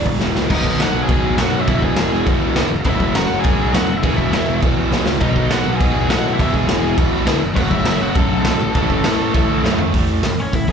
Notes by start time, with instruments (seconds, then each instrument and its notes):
Already playing: distorted electric guitar E2 B2 E3 G#3 B3
0.06 picked electric bass E1, kick, open hi-hat
0.19 picked electric bass E1, distorted electric guitar E2 B2 E3 G#3 B3, snare
0.35 picked electric bass C#2, snare
0.49 picked electric bass B1, distorted electric guitar B2 D#3 F#3 B3 D#4, lead electric guitar D#4, kick, crash
0.55 lead electric guitar D#5
0.65 picked electric bass B1, kick
0.78 picked electric bass B1, distorted electric guitar B2 D#3 F#3 B3 D#4, lead electric guitar F#4, snare, crash
0.82 lead electric guitar F#5
0.93 picked electric bass B1
1.02 lead electric guitar G#4 G#5
1.08 distorted electric guitar B2 D#3 F#3 B3 D#4, picked electric bass B2, kick, crash
1.24 picked electric bass E2
1.37 picked electric bass F#2, distorted electric guitar B2 D#3 F#3 B3 D#4, lead electric guitar F#4 F#5, snare, crash
1.53 distorted electric guitar B2 F#3 B3
1.61 lead electric guitar E4 E5
1.66 picked electric bass E1, distorted electric guitar E2 B2 E3 G#3 B3 E4, lead electric guitar E4 E5, kick, crash
1.71 distorted electric guitar E3
1.82 picked electric bass E1, lead electric guitar G#4 G#5, kick
1.96 picked electric bass E1, distorted electric guitar E2 B2 E3 G#3 B3 E4, snare, crash
2.13 picked electric bass E1
2.25 distorted electric guitar E2 B2 E3 G#3 B3 E4, picked electric bass E2, kick, crash
2.42 picked electric bass A1
2.55 picked electric bass D2, distorted electric guitar E2 B2 E3 G#3 B3 E4, snare, crash
2.69 picked electric bass F#1, distorted electric guitar F#2 C#3
2.73 distorted electric guitar F#3
2.84 picked electric bass F#1, distorted electric guitar F#2 C#3 F#3 A3 C#4 F#4, lead electric guitar E4, kick, crash
2.89 lead electric guitar E5
3.00 picked electric bass F#1, kick
3.15 picked electric bass F#1, distorted electric guitar F#2 C#3 F#3 A3 C#4 F#4, lead electric guitar F#4 F#5, snare, crash
3.30 picked electric bass F#1
3.39 lead electric guitar G#4 G#5
3.44 distorted electric guitar F#2 C#3 F#3 A3 C#4 F#4, picked electric bass F#2, kick, crash
3.61 picked electric bass B1
3.73 picked electric bass E2, distorted electric guitar F#2 C#3 F#3 A3 C#4 F#4, lead electric guitar F#4 F#5, snare, crash
3.87 picked electric bass E1, distorted electric guitar E2 B2 E3
3.98 lead electric guitar E4 E5
4.02 picked electric bass E1, distorted electric guitar E2 B2 E3 G#3 B3 E4, lead electric guitar G#4 G#5, kick, crash
4.17 picked electric bass E1, lead electric guitar E4 E5, kick
4.32 picked electric bass E1, distorted electric guitar E2 B2 E3 G#3 B3 E4, snare, crash
4.48 picked electric bass E1
4.61 distorted electric guitar E2 B2 E3 G#3 B3 E4, picked electric bass E2, kick, crash
4.77 picked electric bass A1
4.91 picked electric bass C#2, distorted electric guitar E2 B2 E3 G#3 B3 E4, snare
4.95 distorted electric guitar E3
5.06 snare
5.20 picked electric bass B1, distorted electric guitar B2 D#3 F#3 B3 D#4, lead electric guitar D#4 D#5, kick, crash
5.36 picked electric bass B1, kick
5.49 picked electric bass B1, distorted electric guitar B2 D#3 F#3 B3 D#4, lead electric guitar F#4 F#5, snare, crash
5.67 picked electric bass B1
5.75 lead electric guitar G#4 G#5
5.81 picked electric bass B2, distorted electric guitar B2 D#3 F#3 B3 D#4, kick, crash
5.94 picked electric bass E2
6.10 picked electric bass A2, distorted electric guitar B2 D#3 F#3 B3 D#4, lead electric guitar F#4 F#5, snare, crash
6.24 distorted electric guitar B2 F#3 B3
6.33 lead electric guitar E4 E5
6.38 picked electric bass E1, distorted electric guitar E2 B2 E3 G#3 B3 E4, lead electric guitar E4 E5, kick, crash
6.42 distorted electric guitar E3
6.53 picked electric bass E1, lead electric guitar G#4 G#5, kick
6.67 picked electric bass E1, distorted electric guitar E2 B2 E3 G#3 B3 E4, snare, crash
6.83 picked electric bass E1
6.97 distorted electric guitar E2 B2 E3 G#3 B3 E4, picked electric bass E2, kick, crash
7.12 picked electric bass A1
7.26 picked electric bass D2, distorted electric guitar E2 B2 E3 G#3 B3 E4, snare, crash
7.42 picked electric bass F#1, distorted electric guitar F#2 C#3
7.46 distorted electric guitar F#3
7.54 picked electric bass F#1, distorted electric guitar F#2 C#3 F#3 A3 C#4 F#4, lead electric guitar F#4 F#5, kick, crash
7.71 picked electric bass F#1, lead electric guitar E4 E5, kick
7.85 picked electric bass F#1, distorted electric guitar F#2 C#3 F#3 A3 C#4 F#4, lead electric guitar E4 E5, snare, crash
8.01 picked electric bass F#1, lead electric guitar F#4 F#5
8.15 picked electric bass F#2, distorted electric guitar F#2 C#3 F#3 A3 C#4 F#4, lead electric guitar A4 A5, kick, crash
8.31 picked electric bass B1
8.45 picked electric bass B1, distorted electric guitar F#2 C#3 F#3 A3 C#4 F#4, snare, crash
8.49 distorted electric guitar F#3
8.59 picked electric bass A1, distorted electric guitar A2 E3 A3
8.75 picked electric bass A1, distorted electric guitar A2 E3 A3 C#4 E4, lead electric guitar A4 A5, kick, crash
8.90 picked electric bass A1, kick
9.04 picked electric bass A1, distorted electric guitar A2 E3 A3 C#4 E4, snare, crash
9.20 picked electric bass A1
9.34 distorted electric guitar A2 E3 A3 C#4 E4, picked electric bass A2, kick, crash
9.50 picked electric bass D2
9.63 picked electric bass F#2, distorted electric guitar A2 E3 A3 C#4 E4, snare
9.68 distorted electric guitar A3
9.78 floor tom
9.93 picked electric bass A1, distorted electric guitar A2 E3 A3, kick, open hi-hat
10.08 open hi-hat
10.23 picked electric bass F#1, distorted electric guitar A2 E3, snare, open hi-hat
10.38 picked electric bass A1, lead electric guitar C#4 C#5, open hi-hat
10.52 distorted electric guitar A2 E3, picked electric bass A2, lead electric guitar E4 E5, kick, open hi-hat
10.68 picked electric bass E2, kick, open hi-hat